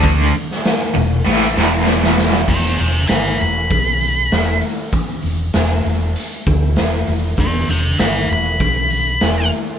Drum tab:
CC |----------------|x---------------|----------------|----------------|
HH |o---o-----------|--o-o-o-o-o-o-o-|o-o-o-o-o-o-o-o-|o-o-o-o-o-o-o-o-|
SD |---oo---o-o-oooo|----o-------o---|----o-------o---|----o-------o---|
BD |o---------------|o-------o-------|o---------o-----|o-------o-------|